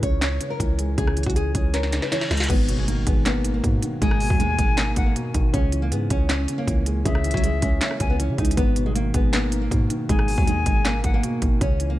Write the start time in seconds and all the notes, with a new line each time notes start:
Already playing: C#3 E3 G#3
0.03 C#2 C#4 C#5, kick, closed hi-hat
0.22 C#5, snare, clap, closed hi-hat
0.41 C#3, closed hi-hat
0.50 A#4
0.60 C#2 E3, kick, closed hi-hat
0.79 G#3, closed hi-hat
0.98 C#2 C#3 G#4, kick, closed hi-hat
1.07 cross-stick
1.17 E3, closed hi-hat, open hi-hat
1.23 C#2 F#4, kick, closed hi-hat
1.30 closed hi-hat
1.36 G#3 G#4, closed hi-hat
1.55 C#2 C#4 G#4, kick, closed hi-hat
1.74 A#4 C#5, snare, closed hi-hat, reverse cymbal
1.83 snare
1.92 C#3, snare, closed hi-hat
2.02 B4, snare
2.12 E3 C#5, snare, closed hi-hat
2.21 snare
2.31 C#2 G#3 D#5, snare, closed hi-hat
2.37 snare, closed hi-hat
2.44 closed hi-hat
2.49 G#1 G#2 B3, kick, closed hi-hat, crash, impact
2.69 B2, closed hi-hat
2.78 G#3
2.88 D#3 A#3, closed hi-hat
3.07 G#1 G#3 B3, kick, closed hi-hat
3.26 A#3 B3, snare, clap, closed hi-hat
3.44 G#2, closed hi-hat
3.54 A#3
3.64 G#2 B2, kick, closed hi-hat
3.82 D#3, closed hi-hat
4.02 G#1 G#2 G#3 G#5, kick, closed hi-hat
4.11 cross-stick
4.20 B2, open hi-hat
4.30 D#2 F#3, kick
4.40 D#3 G#3, closed hi-hat
4.59 G#1 G#3, kick, closed hi-hat
4.77 A#3, snare, clap, closed hi-hat
4.96 G#1 G#2 F#5, kick, closed hi-hat
5.06 A#3
5.16 B2, closed hi-hat
5.34 G#1 D#3, kick, closed hi-hat
5.54 C#2 C#3 C#4, kick, closed hi-hat
5.72 E3, closed hi-hat
5.82 A#3
5.92 G#2 G#3 B3, closed hi-hat
6.10 C#2 C#4, kick, closed hi-hat
6.29 C#4 C#5, snare, clap, closed hi-hat
6.48 C#3, closed hi-hat
6.58 A#3
6.67 C#2 E3, kick, closed hi-hat
6.86 G#3, closed hi-hat
7.05 C#2 C#3 G#3 E5, kick, closed hi-hat
7.15 cross-stick
7.24 E3, closed hi-hat, open hi-hat
7.31 C#2 F#3, kick, closed hi-hat
7.37 closed hi-hat
7.43 G#3, closed hi-hat
7.62 C#2 G#3 C#4, kick, closed hi-hat
7.81 A#3 C#5, snare, clap, closed hi-hat
7.91 cross-stick
8.00 C#2 C#3 G#5, kick, closed hi-hat
8.10 B3
8.19 E3 C#4, closed hi-hat
8.29 C#3
8.38 C#2 G#3 D#4, kick, closed hi-hat
8.45 closed hi-hat
8.51 closed hi-hat
8.57 G#1 G#2 B3, kick, closed hi-hat
8.76 B2, closed hi-hat
8.86 G#3
8.95 D#3 A#3, closed hi-hat
9.14 G#1 G#3 B3, kick, closed hi-hat
9.33 A#3 B3, snare, clap, closed hi-hat
9.52 G#2, closed hi-hat
9.62 A#3
9.71 G#2 B2, kick, closed hi-hat
9.90 D#3, closed hi-hat
10.09 G#1 G#2 G#3 G#5, kick, closed hi-hat
10.19 cross-stick
10.28 B2, open hi-hat
10.38 D#2 F#3, kick
10.47 D#3 G#3, closed hi-hat
10.66 G#1 G#3, kick, closed hi-hat
10.85 A#3, snare, clap, closed hi-hat
11.04 G#1 G#2 F#5, kick, closed hi-hat
11.14 A#3
11.23 B2, closed hi-hat
11.42 G#1 D#3, kick, closed hi-hat
11.61 C#2 C#3 C#4, kick, closed hi-hat
11.80 E3, closed hi-hat
11.90 A#3